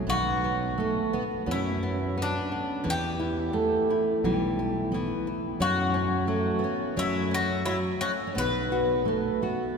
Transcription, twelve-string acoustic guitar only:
0.07 0.77 B3 medium
0.78 1.10 A3 medium
1.14 1.23 B3 medium
1.47 2.90 C#4 medium
2.84 3.53 B3 medium
3.53 4.26 A3 medium
4.24 4.95 G3 medium
4.92 5.62 B3 medium
5.60 6.30 C#4 medium
6.27 6.60 A3 medium
6.59 6.96 B3 medium
6.97 7.65 C#4 loud
7.66 8.26 C#4 medium
8.27 8.35 C#4 medium
8.36 9.05 B3 medium
9.05 9.39 A3 medium
9.42 9.78 B3 medium

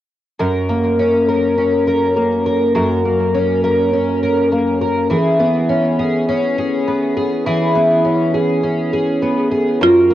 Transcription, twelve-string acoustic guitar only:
0.39 2.73 F#2 medium
0.39 1.27 A#4 medium
0.69 2.15 A#3 medium
0.99 1.57 C#4 soft
1.28 1.86 A#4 medium
1.58 3.34 C#4 soft
1.87 2.45 A#4 medium
2.16 3.04 A#3 soft
2.46 2.74 A#4 medium
2.75 5.10 F#2 medium
2.75 3.62 A#4 medium
3.05 4.51 A#3 soft
3.34 3.92 C#4 medium
3.64 4.22 A#4 medium
3.93 5.42 C#4 medium
4.23 4.80 A#4 medium
4.52 5.16 A#3 soft
4.81 5.10 A#4 medium
5.10 7.45 E3 medium
5.10 5.98 G#4 medium
5.39 6.86 B3 medium
5.69 6.28 C#4 medium
5.99 6.57 G#4 medium
6.29 8.04 C#4 medium
6.58 7.15 G#4 medium
6.88 7.74 B3 soft
7.17 7.45 G#4 medium
7.46 9.81 E3 medium
7.46 8.33 G#4 medium
7.75 9.21 B3 medium
8.05 8.63 C#4 medium
8.34 8.92 G#4 medium
8.63 10.14 C#4 medium
8.93 9.50 G#4 medium
9.22 9.87 B3 soft
9.51 9.81 G#4 medium
9.81 10.14 F#2 medium
9.81 10.14 A#4 medium
10.10 10.14 A#3 medium

